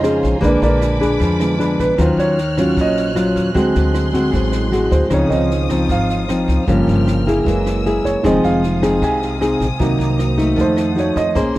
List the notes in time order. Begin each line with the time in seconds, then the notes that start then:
Already playing: F2 C#3 F3 G#3 C4 D#4 F4 C5 C#5 D#5 F5 G#5 A#5 C6
0.03 C#4 G#4 C5, cross-stick, snare
0.23 A#1, kick, snare
0.41 A#1 D3 G#3 A#3 D4 G#4 B4 B5 D6, kick, snare
0.45 D4 A#4 B4 D5
0.62 A#1 D4 A#4 B4 D5, snare
0.81 cross-stick, snare
1.01 D4 G#4 B4, kick, snare
1.20 F2 F3, kick, snare
1.40 D3 G#3 B3, cross-stick, snare
1.59 D4 G#4 B4, snare
1.79 A#1 B4, kick, snare
1.98 D#2 D#3 F#3 C#4 F4 C5 C#5 F6 F#6, kick, cross-stick, snare
2.17 D#2 C#5, snare
2.38 snare
2.57 F#3 C#4 F4, kick, cross-stick, snare
2.77 A#1 A#2, kick, snare
2.81 D#5
2.97 snare
3.15 F#3 C#4 F4, cross-stick, snare
3.36 D#2, kick, snare
3.54 D2 D3 F#3 G#3 C4 F#4 G#4 C6, kick, snare
3.75 D2, snare
3.94 cross-stick, snare
4.13 G#3 C4 F#4, kick, snare
4.32 A1 A2 F#3 G#3 C4, kick, snare
4.52 cross-stick, snare
4.72 G#3 C4 F#4, snare
4.91 D2 C5, kick, snare
5.10 C#2 C#3 F3 C4 D#4 C5 C#5 F5 D#6, kick, cross-stick, snare
5.28 C#2 D#3 F3 C4 D#5, snare
5.51 snare
5.69 F3 C4 D#4, kick, cross-stick, snare
5.89 G#1 G#2 F5, kick, snare
6.09 snare
6.29 F3 C4 D#4, cross-stick, snare
6.48 C#2, kick, snare
6.67 G1 G2 C#3 F3 A#3 C#4 A#4 G5 F6, kick, snare
6.88 G1, snare
7.07 cross-stick, snare
7.27 A#3 E4 G#4, kick, snare
7.45 F#1 E3 F#3 G#3 A#3 G#5 E6, kick, snare
7.66 cross-stick, snare
7.86 A#3 E4 G#4, snare
8.05 F#1 C#5, kick, snare
8.23 F1 D#3 F3 G#3 C4 D#4 G#4 D#5 F5 D#6, kick, cross-stick, snare
8.44 F1 F5, snare
8.63 snare
8.82 C4 D#4 G#4, kick, cross-stick, snare
9.02 C2 C3 G#5, kick, snare
9.22 snare
9.41 C4 D#4 G#4, cross-stick, snare
9.60 A#1, kick, snare
9.79 C2 C3 D#3 F#3 A#3 D#4 F#4 C5 A#5, kick, snare
9.99 C2, snare
10.19 cross-stick, snare
10.38 A3 D#4, kick, snare
10.56 D#3 F3 A3 A4 F#5, kick, snare
10.61 C5
10.77 cross-stick, snare
10.95 A3 D#4 F#4, snare
11.00 C#5
11.16 F2 D#5, kick, snare
11.35 A#1 A#3 C#4 G#4 C5 C6, kick, cross-stick, snare
11.55 snare